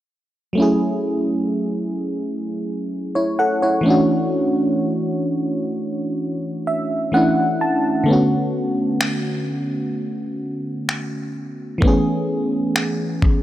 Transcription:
0.53 F#3 A3
0.58 C#4 E4
0.62 G#4
3.15 E4 C#5
3.39 A4 F#5
3.62 E4 C#5
3.81 E3 A3
3.86 C#4 D4
3.90 F#4
6.67 E5
7.12 E3 A3 C#4 D4 F#5
7.16 E4
7.61 A5
8.04 D3 A3
8.08 B3 C#4
8.13 F#4
9.01 finger snap
10.89 finger snap
11.78 E3 A3, kick
11.83 B3 C#4
11.87 G#4
12.76 finger snap
13.22 kick

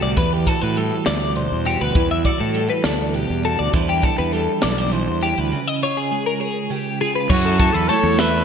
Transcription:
Already playing: A2 D3 A3 F#4 C5
0.02 C2 D5
0.17 E2 E3 B4, kick, closed hi-hat
0.33 G4
0.47 F#4 A4, kick, closed hi-hat
0.62 A2 B4
0.77 G3 A4, closed hi-hat
1.06 D2 D5, snare, closed hi-hat
1.36 B2 C5, closed hi-hat
1.52 E2
1.66 F#4 G4, closed hi-hat
1.81 D2 B4
1.95 E2 E3, kick, closed hi-hat
2.11 E5
2.24 F#4 D5, kick, closed hi-hat
2.40 A2 A4
2.55 G3, closed hi-hat
2.70 B4
2.84 D2 A4 D5, snare, closed hi-hat
3.14 B2 G4, closed hi-hat
3.30 E2
3.43 F#4 A4, closed hi-hat
3.59 D2 D5
3.73 E2 E3 G3 D4 E4 B4 C5, kick, closed hi-hat
3.89 G4
4.02 E4 A4, kick, closed hi-hat
4.18 E2 B4
4.32 G3 A4, closed hi-hat
4.62 B1 A4 D5, snare, closed hi-hat
4.78 C5
4.92 E3 C5, closed hi-hat
5.08 E2
5.21 E4 G4, closed hi-hat
5.38 D2 B4
5.52 C#3
5.68 D#5
5.83 F4 C#5
5.97 G#4
6.12 G#3
6.26 A#4
6.40 G#4 C#5
6.70 C#3 G4
7.01 F4 G#4
7.16 B4
7.30 F#2 F#3 E4 F#4 C#5, kick, crash
7.45 A4
7.60 E4 A4, kick, closed hi-hat
7.73 E2 A4 B4
7.88 A3 E4 A4 C#5, closed hi-hat
8.04 E2
8.19 A4 B4 E5, snare, closed hi-hat

